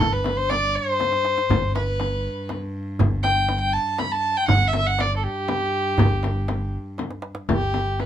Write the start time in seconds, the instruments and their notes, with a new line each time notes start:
Already playing: cello G2, violin A4
0.00 fingered electric bass G1, frame drum
0.13 violin B4
0.24 tombak tek, frame drum
0.37 violin C5, tombak ka
0.50 violin D5, tombak tek, frame drum
0.75 violin C5
1.00 tombak tek, frame drum
1.13 tombak ka
1.25 tombak tek
1.38 tombak ka
1.49 fingered electric bass G1, cello G2, frame drum, tombak dum
1.75 violin B4, tombak tek, frame drum
2.00 tombak tek, frame drum
2.49 tombak tek, frame drum
2.99 fingered electric bass G1, tombak dum, frame drum
3.23 violin G5, tombak tek, frame drum
3.49 tombak tek, frame drum
3.61 violin G5
3.73 violin A5
3.98 violin B5, tombak tek, frame drum
4.12 violin A5
4.37 violin G5
4.48 fingered electric bass G1, cello G2, violin F#5, tombak dum, frame drum
4.68 violin E5
4.73 tombak tek, frame drum
4.78 violin E5
4.86 violin F#5
4.99 violin D5, tombak tek, frame drum
5.17 violin A4
5.24 violin G4
5.48 tombak tek, frame drum
5.98 fingered electric bass G1, tombak dum, frame drum
6.23 tombak tek, frame drum
6.36 tombak ka
6.48 tombak tek, frame drum
6.98 tombak tek, frame drum
7.10 tombak ka
7.22 tombak tek
7.35 tombak ka
7.49 fingered electric bass G1, violin G4, frame drum
7.74 frame drum
8.00 violin B4, frame drum